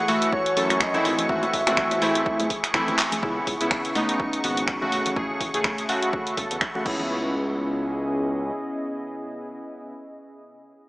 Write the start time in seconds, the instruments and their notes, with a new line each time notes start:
Already playing: ambient pad F#4 C#5 G#5, string machine C#6
0.08 synth keys E3 A3 F#4, soft synth lead E5, open hi-hat, high conga
0.22 closed hi-hat
0.33 soft synth lead C#5, kick
0.46 closed hi-hat
0.56 analog synth bass F#2, synth keys E3 A3 A4, open hi-hat
0.70 finger snap, closed hi-hat, high bongo
0.81 soft synth lead D#5, finger snap, kick
0.94 synth keys E3 A3 C4 E4, closed hi-hat, low conga
1.05 analog synth bass G#1, ambient pad G#4, open hi-hat
1.18 closed hi-hat, low conga
1.29 analog synth bass G#1, synth keys E3 A3 C4 F#4, soft synth lead E5, kick
1.43 closed hi-hat, high bongo
1.53 analog synth bass G#1, kick, open hi-hat
1.67 analog synth bass G#1, synth keys E3 A3 C4 F#4, finger snap, closed hi-hat, high bongo
1.77 finger snap, kick
1.91 closed hi-hat, high bongo
2.01 synth keys E3 A3 C4 E4, open hi-hat, high conga
2.15 closed hi-hat
2.26 kick
2.40 analog synth bass F#1, closed hi-hat, high conga
2.50 kick, open hi-hat
2.64 finger snap, closed hi-hat
2.74 synth keys E3 A3 C4 E4, finger snap, kick
2.88 analog synth bass D#1, closed hi-hat, low conga
2.99 clap, open hi-hat
3.12 closed hi-hat, high conga, low conga
3.22 analog synth bass C#2, synth keys C#3 B3 E4, ambient pad C#4, string machine C#6, kick
3.47 analog synth bass C#2, kick, open hi-hat
3.60 analog synth bass C#2, synth keys C#3 B3 E4, closed hi-hat
3.71 finger snap, kick
3.85 closed hi-hat
3.95 synth keys C#3 B3 D#4, open hi-hat, high conga
4.09 closed hi-hat
4.20 kick
4.33 closed hi-hat
4.44 analog synth bass G#1, synth keys C#3 B3 F#4, open hi-hat
4.57 closed hi-hat
4.68 finger snap, kick
4.81 synth keys C#3 A3 F#4, low conga
4.92 analog synth bass A1, ambient pad A3, open hi-hat
5.06 closed hi-hat, low conga
5.16 analog synth bass A1, synth keys C#3 A3 G#4, kick
5.25 ambient pad E5
5.41 analog synth bass A1, kick, open hi-hat
5.54 analog synth bass A1, synth keys C#3 A3 G#4, closed hi-hat
5.64 finger snap, kick
5.78 ambient pad B5, closed hi-hat
5.89 synth keys C#3 A3 F#4, open hi-hat
6.03 closed hi-hat
6.13 kick
6.27 closed hi-hat
6.37 analog synth bass E1, synth keys C#3 A3 A4, kick, open hi-hat
6.51 analog synth bass E2, closed hi-hat
6.61 finger snap, kick
6.75 synth keys C#3 A3 F#4, low conga
6.85 analog synth bass C#2, synth keys C#3 B3 E4, ambient pad C#4, kick, crash
6.94 ambient pad G#4
7.00 low conga
7.26 ambient pad D#5